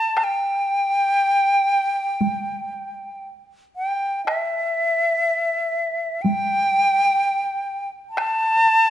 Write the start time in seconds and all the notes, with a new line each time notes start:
Already playing: A5
0.17 taiko rim
0.24 G5
2.21 taiko high
3.76 G5
4.26 E5, taiko rim
6.22 G5, taiko high
8.10 A5
8.17 taiko rim